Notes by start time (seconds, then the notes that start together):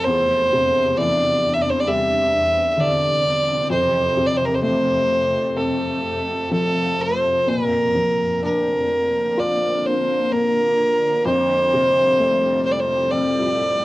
Already playing: C3
0.05 E2 D4 C5
0.53 C3
0.97 E3 D5
1.53 E5
1.62 D5
1.70 C5
1.80 D5
1.87 G3 C4 E5
2.72 E5
2.77 D3 D5
3.69 F2 A3 C5
4.17 C3
4.26 D5
4.37 C5
4.45 A#4
4.54 C5
4.63 A3 C5
5.57 C4 A4
6.51 F3 A4
7.01 C5
7.47 A#2 D3 A#3 C4 A#4
7.95 F3
8.43 D4 A#4
9.37 D4 F4 D5
9.86 C5
10.32 A#3 A#4
11.25 F2 A2 F3 G3 C5
11.73 C3
12.20 A3
12.66 C5
12.72 D5
12.80 C5
13.10 A3 C4 D5